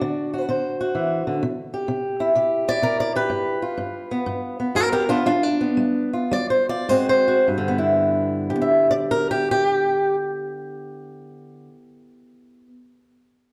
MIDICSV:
0, 0, Header, 1, 2, 480
1, 0, Start_track
1, 0, Tempo, 472813
1, 1439, Time_signature, 4, 2, 24, 8
1, 4324, Tempo, 497100
1, 5284, Tempo, 530035
1, 6244, Tempo, 578035
1, 7204, Tempo, 609137
1, 11977, End_track
2, 0, Start_track
2, 0, Title_t, "Steel-string acoustic guitar"
2, 0, Program_c, 0, 25
2, 0, Note_on_c, 0, 62, 50
2, 0, Note_on_c, 0, 66, 46
2, 0, Note_on_c, 0, 74, 85
2, 15, Note_on_c, 0, 50, 78
2, 329, Note_off_c, 0, 66, 0
2, 341, Note_on_c, 0, 66, 43
2, 456, Note_off_c, 0, 50, 0
2, 488, Note_off_c, 0, 74, 0
2, 494, Note_on_c, 0, 50, 75
2, 502, Note_on_c, 0, 72, 51
2, 806, Note_off_c, 0, 66, 0
2, 818, Note_on_c, 0, 66, 45
2, 934, Note_off_c, 0, 50, 0
2, 962, Note_on_c, 0, 52, 56
2, 1280, Note_off_c, 0, 52, 0
2, 1290, Note_on_c, 0, 50, 61
2, 1428, Note_off_c, 0, 66, 0
2, 1429, Note_off_c, 0, 62, 0
2, 1430, Note_off_c, 0, 72, 0
2, 1444, Note_off_c, 0, 50, 0
2, 1448, Note_on_c, 0, 48, 74
2, 1763, Note_on_c, 0, 67, 46
2, 1890, Note_off_c, 0, 48, 0
2, 1909, Note_on_c, 0, 48, 72
2, 2235, Note_on_c, 0, 64, 51
2, 2360, Note_off_c, 0, 48, 0
2, 2390, Note_on_c, 0, 48, 77
2, 2392, Note_off_c, 0, 67, 0
2, 2396, Note_on_c, 0, 67, 49
2, 2718, Note_off_c, 0, 64, 0
2, 2722, Note_on_c, 0, 64, 48
2, 2727, Note_on_c, 0, 74, 105
2, 2840, Note_off_c, 0, 48, 0
2, 2867, Note_on_c, 0, 48, 72
2, 2872, Note_off_c, 0, 67, 0
2, 2876, Note_on_c, 0, 70, 86
2, 3034, Note_off_c, 0, 74, 0
2, 3047, Note_on_c, 0, 74, 94
2, 3196, Note_off_c, 0, 70, 0
2, 3201, Note_off_c, 0, 74, 0
2, 3204, Note_on_c, 0, 67, 49
2, 3211, Note_on_c, 0, 71, 87
2, 3319, Note_off_c, 0, 48, 0
2, 3347, Note_on_c, 0, 43, 77
2, 3675, Note_off_c, 0, 67, 0
2, 3679, Note_on_c, 0, 65, 47
2, 3709, Note_off_c, 0, 64, 0
2, 3801, Note_off_c, 0, 43, 0
2, 3832, Note_on_c, 0, 43, 66
2, 4175, Note_on_c, 0, 59, 46
2, 4290, Note_off_c, 0, 43, 0
2, 4327, Note_on_c, 0, 43, 78
2, 4638, Note_off_c, 0, 59, 0
2, 4647, Note_off_c, 0, 71, 0
2, 4650, Note_on_c, 0, 59, 42
2, 4768, Note_off_c, 0, 43, 0
2, 4798, Note_on_c, 0, 43, 72
2, 4803, Note_on_c, 0, 67, 74
2, 4808, Note_on_c, 0, 70, 102
2, 4852, Note_off_c, 0, 67, 0
2, 4958, Note_off_c, 0, 70, 0
2, 4965, Note_on_c, 0, 67, 74
2, 4970, Note_on_c, 0, 70, 86
2, 5068, Note_off_c, 0, 67, 0
2, 5122, Note_off_c, 0, 65, 0
2, 5125, Note_on_c, 0, 62, 76
2, 5126, Note_off_c, 0, 70, 0
2, 5127, Note_off_c, 0, 59, 0
2, 5132, Note_on_c, 0, 65, 87
2, 5139, Note_on_c, 0, 59, 52
2, 5204, Note_off_c, 0, 62, 0
2, 5252, Note_off_c, 0, 43, 0
2, 5274, Note_off_c, 0, 59, 0
2, 5280, Note_off_c, 0, 65, 0
2, 5289, Note_on_c, 0, 55, 83
2, 5294, Note_on_c, 0, 65, 80
2, 5298, Note_on_c, 0, 62, 67
2, 5338, Note_off_c, 0, 62, 0
2, 5445, Note_off_c, 0, 65, 0
2, 5445, Note_on_c, 0, 62, 88
2, 5605, Note_on_c, 0, 59, 41
2, 5727, Note_off_c, 0, 55, 0
2, 5753, Note_on_c, 0, 55, 69
2, 6078, Note_off_c, 0, 62, 0
2, 6082, Note_on_c, 0, 65, 45
2, 6210, Note_off_c, 0, 55, 0
2, 6245, Note_on_c, 0, 55, 80
2, 6255, Note_on_c, 0, 74, 93
2, 6397, Note_off_c, 0, 74, 0
2, 6400, Note_on_c, 0, 72, 76
2, 6555, Note_off_c, 0, 65, 0
2, 6555, Note_off_c, 0, 72, 0
2, 6560, Note_on_c, 0, 74, 90
2, 6564, Note_on_c, 0, 65, 44
2, 6681, Note_off_c, 0, 55, 0
2, 6697, Note_off_c, 0, 59, 0
2, 6698, Note_off_c, 0, 65, 0
2, 6720, Note_on_c, 0, 44, 67
2, 6724, Note_off_c, 0, 74, 0
2, 6724, Note_on_c, 0, 72, 82
2, 6727, Note_on_c, 0, 56, 48
2, 6733, Note_on_c, 0, 60, 44
2, 6740, Note_on_c, 0, 66, 44
2, 6879, Note_off_c, 0, 72, 0
2, 6891, Note_on_c, 0, 72, 100
2, 7035, Note_off_c, 0, 66, 0
2, 7045, Note_on_c, 0, 66, 49
2, 7175, Note_off_c, 0, 44, 0
2, 7188, Note_off_c, 0, 66, 0
2, 7192, Note_off_c, 0, 56, 0
2, 7194, Note_off_c, 0, 60, 0
2, 7210, Note_on_c, 0, 43, 62
2, 7213, Note_off_c, 0, 72, 0
2, 7289, Note_on_c, 0, 50, 57
2, 7370, Note_on_c, 0, 59, 55
2, 7451, Note_on_c, 0, 64, 51
2, 8013, Note_off_c, 0, 59, 0
2, 8016, Note_on_c, 0, 67, 65
2, 8057, Note_off_c, 0, 43, 0
2, 8060, Note_on_c, 0, 59, 65
2, 8107, Note_on_c, 0, 76, 68
2, 8333, Note_off_c, 0, 76, 0
2, 8337, Note_on_c, 0, 74, 88
2, 8352, Note_off_c, 0, 74, 0
2, 8360, Note_off_c, 0, 64, 0
2, 8497, Note_on_c, 0, 70, 94
2, 8643, Note_off_c, 0, 67, 0
2, 8650, Note_off_c, 0, 70, 0
2, 8653, Note_on_c, 0, 67, 87
2, 8804, Note_off_c, 0, 67, 0
2, 8814, Note_on_c, 0, 67, 95
2, 9316, Note_off_c, 0, 67, 0
2, 10526, Note_off_c, 0, 50, 0
2, 11298, Note_off_c, 0, 59, 0
2, 11977, End_track
0, 0, End_of_file